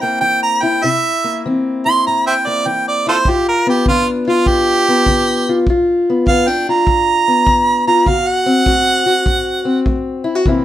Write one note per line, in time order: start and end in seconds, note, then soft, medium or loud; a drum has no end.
0.00 0.19 G2 medium
0.00 0.82 A#3 medium
0.00 0.82 C4 medium
0.00 0.62 E4 medium
0.00 0.20 G5 medium
0.21 0.78 E3 medium
0.21 0.41 G5 loud
0.43 0.64 A#5 medium
0.63 0.83 E4 medium
0.63 0.85 G5 medium
0.83 1.40 C3 medium
0.83 1.84 E4 medium
0.83 1.42 E5 loud
1.24 2.45 A#3 medium
1.46 2.01 E3 medium
1.46 3.24 C4 medium
1.86 3.06 E4 medium
1.86 2.05 C6 loud
2.07 2.62 G2 medium
2.07 2.25 A#5 medium
2.27 2.34 C5 medium
2.27 2.34 E5 medium
2.27 2.48 G5 medium
2.47 3.25 A#3 medium
2.47 2.69 D5 medium
2.66 3.22 E3 medium
2.66 2.86 G5 medium
2.88 3.06 D5 medium
3.07 3.27 E4 medium
3.07 3.15 F4 medium
3.07 3.17 A4 medium
3.07 3.31 C5 loud
3.25 3.83 G2 medium
3.25 4.27 F4 medium
3.25 kick medium
3.29 3.47 G4 medium
3.48 3.67 A#4 medium
3.67 4.86 B3 medium
3.67 3.87 G4 medium
3.86 4.43 D3 medium
3.86 6.29 D4 medium
3.86 4.07 F4 loud
3.86 kick medium
4.28 5.47 F4 medium
4.28 4.49 F4 medium
4.46 5.03 G2 medium
4.46 5.64 G4 loud
4.46 kick medium
4.88 5.66 B3 medium
5.06 5.63 D3 medium
5.06 kick medium
5.49 5.66 F4 medium
5.67 6.24 G2 medium
5.67 6.68 F4 medium
5.67 kick medium
6.10 6.28 B3 medium
6.27 6.84 D3 medium
6.27 6.48 B3 medium
6.27 6.49 F5 loud
6.27 kick medium
6.48 8.08 D4 medium
6.48 6.67 G5 medium
6.69 7.86 F4 medium
6.69 7.85 A#5 loud
6.87 7.43 G2 medium
6.87 kick medium
7.28 8.05 B3 medium
7.47 8.03 D3 medium
7.47 kick medium
7.87 8.05 F4 medium
7.87 8.10 A#5 loud
8.06 8.63 D3 medium
8.06 8.66 F#4 medium
8.06 8.29 F5 medium
8.06 kick medium
8.27 10.03 F#5 loud
8.46 9.64 C4 medium
8.66 9.23 A3 medium
8.66 9.05 F#4 medium
8.66 kick medium
9.06 10.24 F#4 medium
9.26 9.83 A2 medium
9.26 kick medium
9.65 10.44 C4 medium
9.86 10.42 A3 medium
9.86 kick medium
10.24 10.35 E4 medium
10.35 10.46 F#4 medium
10.45 10.65 C3 medium
10.45 10.65 E3 medium
10.45 10.65 A#3 medium
10.45 10.65 C4 medium
10.45 10.65 E4 medium
10.45 kick medium